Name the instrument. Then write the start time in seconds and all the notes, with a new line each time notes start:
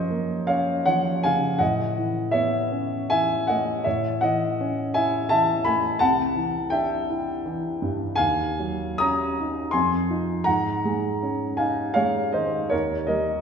grand piano
Already playing: F#2 F3 A#4 C5 C#5 D#5
0.10 A#3
0.47 C#4 C#5 F5
0.85 F3 C#5 F#5
1.23 C#3 F5 G#5
1.58 A2 D#5 F#5
1.98 E3
2.31 B3 C#5 E5
2.72 C#4
3.10 E3 E5 G#5
3.47 A3 D#5 F#5
3.84 A2 C#5 E5
4.21 E3 D#5 F#5
4.60 C#4
4.94 E4 E5 G#5
5.29 E3 E5 A5
5.64 A3 G#5 B5
5.99 C2 F#5 A5
6.36 E3
6.70 D4 E5 G5
7.10 E4
7.46 E3
7.82 G2
8.16 D#2 F5 G#5
8.59 F#3
8.98 C#4 A#5 D#6
9.39 D#4
9.71 F2 G#5 C6
10.10 D#4 F4
10.44 G#2 F#5 A#5
10.85 G#3
11.23 C#4
11.57 D#4 F5 G#5
11.94 G#3 C#5 F5
12.32 D#3 C5 D#5
12.70 D#2 A#4 C#5
13.07 G3 A#4 D#5